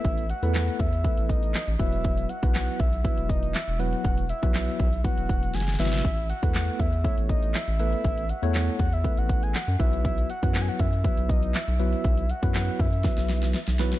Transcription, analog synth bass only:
\new Staff \with { instrumentName = "Analog synth bass" } { \clef bass \time 4/4 \key a \lydian \tempo 4 = 120 a,,8. e,8. e,8. a,,4 a,,16 e,,8~ | e,,8. b,,8. b,,8. e,,4 e,,8. | e,,8. b,,8. b,,8. e,,16 e,,8 fis,,8 gis,,8 | a,,8. e,8. e,8. a,,4 a,,8. |
a,,8. e,8. e,8. a,,4 fis,16 b,,8~ | b,,8. fis,8. fis,8. b,,4 b,,8. | b,,8. fis,8. fis,8. b,,4 b,,8. | }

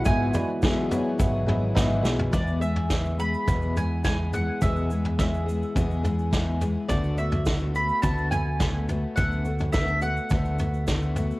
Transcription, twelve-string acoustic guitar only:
\new Staff \with { instrumentName = "Twelve-string acoustic guitar" } { \time 4/4 \key e \mixolydian \tempo 4 = 105 <gis, e fis b e' gis'>8 <fis b e' gis'>8 <gis, e fis b e' gis'>8 <fis b e' gis'>8 <fis b e' gis'>8 <fis b e' gis'>8 <gis, e fis b e' gis'>8 <fis b e' gis'>8 | <e, b, e gis b gis'>8 <e gis b gis'>8 <e gis b gis'>8 <e gis b gis'>8 <e, b, e gis b gis'>8 <e gis b gis'>8 <e gis b gis'>8 <e gis b gis'>8 | <e, b, e gis b gis'>8 <e gis b gis'>8 <e gis b gis'>8 <e gis b gis'>8 <e, b, e gis b gis'>8 <e gis b gis'>8 <e gis b gis'>8 <e gis b gis'>8 | <d a b fis'>8 <a b fis'>8 <d a b fis'>8 <a b fis'>8 <d a b fis'>8 <a b fis'>8 <d a b fis'>8 <a b fis'>8 |
<d a b fis'>8 <a b fis'>8 <d a b fis'>8 <a b fis'>8 <d a b fis'>8 <a b fis'>8 <d a b fis'>8 <a b fis'>8 | }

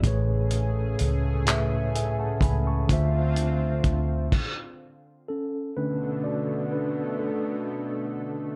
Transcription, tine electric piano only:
\new Staff \with { instrumentName = "Tine electric piano" } { \time 6/8 \key b \dorian \tempo 4. = 42 << { r2 <e'' gis''>16 <fis'' a''>16 <gis'' b''>16 <a'' cis'''>16~ | <a'' cis'''>16 r2 r16 <cis' a'>8 | <d a cis' d' b'>8 <fis' d''>8 <d' b'>8 <d' a'>4. | } \\ { <a, a gis' b' cis''>4 r8 <a, a gis' b' e''>4 r8 | <d a f' c'' e''>4 r2 | r2. | } >> }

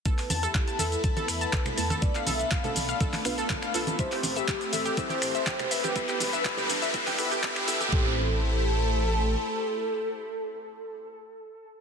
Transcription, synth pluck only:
\new Staff \with { instrumentName = "Synth pluck" } { \time 4/4 \key a \minor \tempo 4 = 122 a'16 r16 a''16 a'16 r16 a''16 a'16 r16 a''16 a'16 r16 a''16 a'16 r16 a''16 a'16 | r16 f''16 a'16 r16 f''16 a'16 r16 f''16 a'16 r16 f''16 a'16 r16 f''16 a'16 r16 | e''16 g'16 r16 e''16 g'16 r16 e''16 g'16 e''16 g'16 r16 e''16 g'16 r16 e''16 g'16 | e''16 g'16 r16 e''16 e''16 g'16 r16 e''16 e''16 g'16 e''16 g'16 r16 g'16 e''16 g'16 |
g'8 r2. r8 | r1 | }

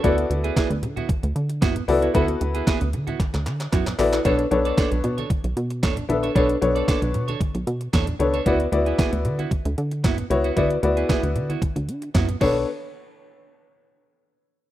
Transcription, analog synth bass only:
\new Staff \with { instrumentName = "Analog synth bass" } { \clef bass \time 4/4 \key b \dorian \tempo 4 = 114 d,8 d,8 r16 d,16 d8 r16 d,16 d8 fis,8 cis,8 | d,8 d,8 r16 d,16 d8 r16 d,16 d8 fis,8 ais,,8 | b,,8 b,,8 r16 b,,16 b,8 r16 b,,16 b,8 e,8 ais,,8 | b,,8 b,,8 r16 b,,16 b,8 r16 b,,16 b,8 e,8 cis,8 |
d,8 d,8 r16 d,16 d8 r16 d,16 d8 fis,8 cis,8 | d,8 d,8 r16 d,16 d8 r16 d,16 d8 fis,8 b,,8 | r1 | }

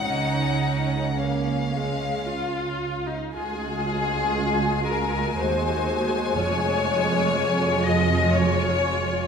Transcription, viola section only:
\new Staff \with { instrumentName = "Viola section" } { \time 3/4 \key des \major \tempo 4 = 60 << { des'4 bes8 aes8 f'8. ees'16 | f'2 ges'4 | f'2. | } \\ { r2. | aes2.~ | aes2. | } >> }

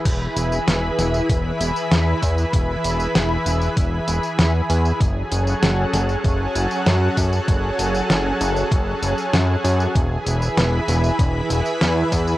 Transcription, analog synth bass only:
\new Staff \with { instrumentName = "Analog synth bass" } { \clef bass \time 4/4 \key e \major \tempo 4 = 97 e,,8 e,,8 e,,8 e,,8 e,,8 e,,8 e,8 e,8 | e,,8 e,,8 e,,8 e,,8 e,,8 e,,8 e,8 e,8 | fis,,8 fis,,8 fis,,8 fis,,8 fis,,8 fis,,8 fis,8 fis,8 | fis,,8 fis,,8 fis,,8 fis,,8 fis,,8 fis,,8 fis,8 fis,8 |
e,,8 e,,8 e,,8 e,,8 e,,8 e,,8 e,8 e,8 | }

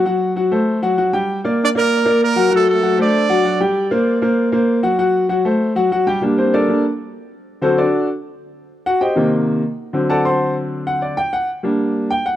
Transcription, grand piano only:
<<
  \new Staff \with { instrumentName = "Grand piano" } { \time 4/4 \key g \minor \tempo 4 = 194 <fis fis' fis''>4 <fis fis' fis''>8 <a a' c''>4 <fis fis' fis''>8 <fis fis' fis''>8 <g g' g''>8~ | <g g' g''>8 <bes bes' d''>4 <bes bes' d''>4 <bes bes' d''>4 <fis fis' fis''>8 | <fis fis' fis''>4 <fis fis' fis''>8 <a a' c''>4 <fis fis' fis''>8 <fis fis' fis''>8 <g g' g''>8~ | <g g' g''>8 <bes bes' c''>4 <bes bes' c''>4 <bes bes' c''>4 <fis fis' fis''>8 |
<fis fis' fis''>4 <fis fis' fis''>8 <a a' c''>4 <fis fis' fis''>8 <fis fis' fis''>8 <g g' g''>8 | r8 <c' c''>8 <d' a' bes' d''>4 r2 | r8 <c' fis' a' c''>8 <d' fis' a' d''>4 r2 | r8 <fis' fis''>8 <g' c'' ees'' g''>4 r2 |
r8 <a' d'' fis'' a''>8 <c'' fis'' a'' c'''>4 r4 fis''8 d''8 | g''8 fis''8 r2 g''8 fis''8 | }
  \new Staff \with { instrumentName = "Grand piano" } { \clef bass \time 4/4 \key g \minor r1 | r1 | r1 | r1 |
r1 | <g bes d'>4. <g bes d'>8 r2 | r8 <d fis>8 r2. | r4. <c ees bes>4. r4 |
<d fis c'>1 | r4. <g bes d'>4. r4 | }
>>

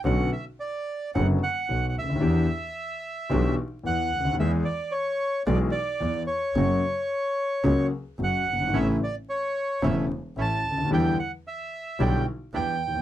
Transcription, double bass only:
\new Staff \with { instrumentName = "Double bass" } { \clef bass \time 4/4 \key b \minor \tempo 4 = 111 b,,8 r4. fis,,8 r8 b,,8 d,8 | e,8 r4. b,,8 r8 e,8 d,8 | e,8 r4. b,,8 r8 e,8 r8 | fis,,8 r4. cis,8 r8 fis,,8 g,,8 |
a,,8 r4. e,,8 r8 a,,8 d,8 | e,8 r4. b,,8 r8 e,8 r8 | }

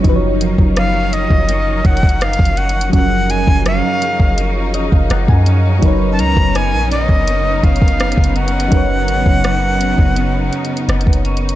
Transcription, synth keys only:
\new Staff \with { instrumentName = "Synth keys" } { \time 4/4 \key gis \dorian \tempo 4 = 83 << { r1 | r2 r8 dis''16 eis''16 fis''16 gis''8. | r1 | r1 | } \\ { <eis fis dis' b' cis''>1 | <eis fis cis' ais'>1 | <fis dis' ais' b' cis''>1 | <fis dis' ais' b' cis''>1 | } >> }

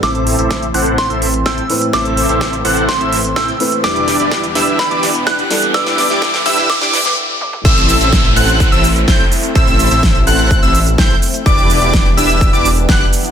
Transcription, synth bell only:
\new Staff \with { instrumentName = "Synth bell" } { \time 4/4 \key a \dorian \tempo 4 = 126 d'''2 c'''4 e'''4 | d'''2 c'''4 e'''4 | d'''2 b''4 fis'''4 | e'''2 d'''4 r4 |
r1 | r1 | r1 | }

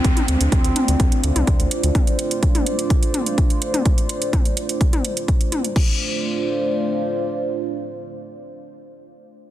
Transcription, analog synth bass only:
\new Staff \with { instrumentName = "Analog synth bass" } { \clef bass \time 4/4 \key d \minor \tempo 4 = 126 d,16 r16 d,16 d,16 d,16 d,16 r16 d,16 d,16 r16 d,16 c,16 d,16 d,16 r16 d,16 | r1 | r1 | r1 |
r1 | }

